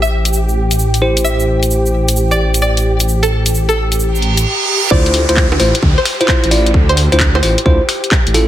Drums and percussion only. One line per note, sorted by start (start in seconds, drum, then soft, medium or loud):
0.03 shaker soft
0.25 closed hi-hat medium
0.25 shaker medium
0.33 shaker medium
0.49 shaker soft
0.71 closed hi-hat medium
0.71 shaker medium
0.79 shaker medium
0.94 closed hi-hat soft
0.94 shaker soft
1.17 closed hi-hat medium
1.17 shaker medium
1.25 shaker medium
1.40 shaker soft
1.63 closed hi-hat medium
1.63 shaker medium
1.71 shaker medium
1.86 shaker soft
2.08 closed hi-hat medium
2.08 shaker medium
2.16 shaker medium
2.31 shaker soft
2.54 closed hi-hat medium
2.54 shaker medium
2.77 closed hi-hat soft
2.77 shaker soft
3.00 closed hi-hat medium
3.00 shaker medium
3.08 shaker medium
3.23 closed hi-hat soft
3.23 shaker soft
3.46 closed hi-hat medium
3.46 shaker medium
3.54 shaker medium
3.69 shaker soft
3.92 closed hi-hat medium
3.92 shaker medium
4.00 shaker medium
4.15 shaker soft
4.22 closed hi-hat soft
4.37 closed hi-hat medium
4.37 shaker medium
4.91 kick loud
5.06 closed hi-hat soft
5.14 open hi-hat loud
5.29 closed hi-hat medium
5.37 kick loud
5.37 clap loud
5.52 finger snap soft
5.52 high bongo medium
5.60 open hi-hat medium
5.75 closed hi-hat medium
5.83 kick loud
6.05 finger snap medium
6.05 open hi-hat loud
6.21 closed hi-hat medium
6.28 kick loud
6.28 clap loud
6.44 closed hi-hat medium
6.51 open hi-hat medium
6.66 closed hi-hat medium
6.74 kick loud
6.89 closed hi-hat soft
6.97 open hi-hat loud
7.12 closed hi-hat medium
7.20 kick loud
7.20 clap loud
7.35 finger snap soft
7.35 high bongo medium
7.43 open hi-hat medium
7.58 closed hi-hat medium
7.66 kick loud
7.89 finger snap medium
7.89 open hi-hat loud
8.04 closed hi-hat medium
8.12 kick loud
8.12 clap loud
8.27 closed hi-hat soft
8.34 open hi-hat medium